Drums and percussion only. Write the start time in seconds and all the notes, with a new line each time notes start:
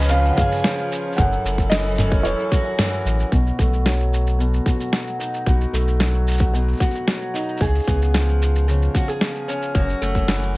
0.02 shaker
0.05 shaker
0.08 shaker
0.12 shaker
0.25 shaker
0.38 kick, mid tom, shaker
0.52 shaker
0.55 shaker
0.58 shaker
0.62 snare, shaker
0.65 shaker
0.69 shaker
0.72 shaker
0.75 shaker
0.79 shaker
0.92 shaker
1.12 shaker
1.18 kick, mid tom, shaker
1.32 shaker
1.46 shaker
1.58 kick, shaker
1.72 snare, shaker
1.86 shaker
1.91 shaker
1.95 mid tom, shaker
1.99 shaker
2.12 kick, shaker
2.26 shaker
2.39 shaker
2.52 kick, shaker
2.79 snare, mid tom, shaker
2.93 shaker
3.06 shaker
3.20 shaker
3.32 kick, shaker
3.47 shaker
3.59 kick, shaker
3.73 shaker
3.86 snare, shaker
4.00 shaker
4.14 shaker
4.27 shaker
4.40 shaker
4.54 shaker
4.66 kick, shaker
4.80 shaker
4.93 snare, shaker
5.07 shaker
5.20 shaker
5.34 shaker
5.46 kick, shaker
5.61 shaker
5.74 shaker
5.88 shaker
6.00 snare, shaker
6.14 shaker
6.28 shaker
6.31 shaker
6.34 shaker
6.38 kick, shaker
6.41 shaker
6.55 shaker
6.68 shaker
6.73 shaker
6.77 kick, shaker
6.81 shaker
6.91 shaker
6.95 shaker
7.08 snare, shaker
7.22 shaker
7.35 shaker
7.49 shaker
7.57 kick, shaker
7.62 shaker
7.66 shaker
7.75 shaker
7.79 shaker
7.84 kick, shaker
7.88 shaker
7.97 shaker
8.02 shaker
8.14 snare, shaker
8.29 shaker
8.42 shaker
8.56 shaker
8.69 shaker
8.82 shaker
8.95 kick, shaker
9.09 shaker
9.21 snare, shaker
9.35 shaker
9.49 shaker
9.62 shaker
9.75 kick, shaker
9.89 shaker
10.02 shaker
10.15 kick, shaker
10.28 snare, shaker
10.43 shaker